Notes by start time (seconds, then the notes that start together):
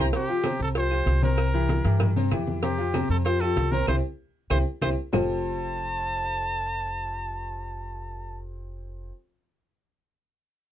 0.13 C3 C4 G4 C5, cowbell, high conga, maracas
0.28 F3 F4 G4, high conga, maracas
0.44 C3 C4 C5, cowbell, high conga, claves, maracas
0.59 C2 A4, high conga, maracas
0.75 F3 F4 G4 C5, cowbell, high conga, maracas
0.91 F3 F4 G4, high conga, claves, maracas
1.06 C2, cowbell, high conga, maracas
1.22 C3 C4 A#4 C5, high conga, maracas
1.38 cowbell, high conga, claves, maracas
1.53 E3 E4 G4, high conga, maracas
1.69 cowbell, high conga, maracas
1.85 G2 E3 E4 G4, cowbell, high conga, maracas
2.00 cowbell, high conga, low conga, claves, maracas
2.16 C3 C4 C5, high conga, maracas
2.31 F2 E3 E4 G4, cowbell, high conga, claves, maracas
2.47 high conga, maracas
2.62 C3 C4 G4 C5, cowbell, high conga, maracas
2.78 F3 F4 G4, high conga, maracas
2.93 C3 C4 C5, cowbell, high conga, claves, maracas
3.09 F2 A4, high conga, maracas
3.25 F3 F4 G4 C5, cowbell, high conga, maracas
3.40 F3 F4 G4 A4, high conga, claves, maracas
3.56 C2, cowbell, high conga, maracas
3.71 C3 C4 A#4 C5, high conga, maracas
3.87 C2 C4 E4 G4 C5, cowbell, high conga, claves, maracas
4.50 C2 C4 E4 G4 C5, cowbell, high conga, claves, maracas
4.82 C2 C4 E4 G4 C5, cowbell, high conga, claves, maracas
5.12 F1 F3 C4 F4 G4 A4 C5 A5, low bongo, low conga, claves, maracas